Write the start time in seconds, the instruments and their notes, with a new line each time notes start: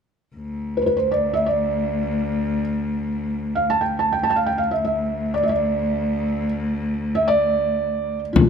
0.36 cello D2
0.77 felt piano B4
0.82 felt piano C5
0.86 felt piano B4
0.97 felt piano C5
1.11 felt piano D5
1.33 felt piano E5
1.46 felt piano D5
3.55 felt piano F5
3.70 felt piano A5
3.81 felt piano G5
3.99 felt piano A5
4.13 felt piano G5
4.23 felt piano A5
4.29 felt piano G5 A5
4.35 cello D2, felt piano F5
4.46 felt piano G5
4.58 felt piano F5
4.71 felt piano E5
4.85 felt piano E5
5.34 felt piano D5
5.43 felt piano E5
5.49 felt piano D5
7.15 felt piano E5
7.28 felt piano D5
8.33 felt piano F4, frame drum
8.42 felt piano F4